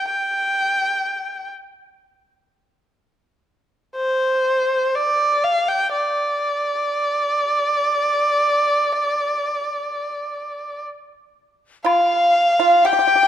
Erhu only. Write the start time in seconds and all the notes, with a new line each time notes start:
0.09 G5
3.96 C5
4.95 D5
5.44 F5
5.68 G5
5.92 D5
11.85 F5
12.86 G5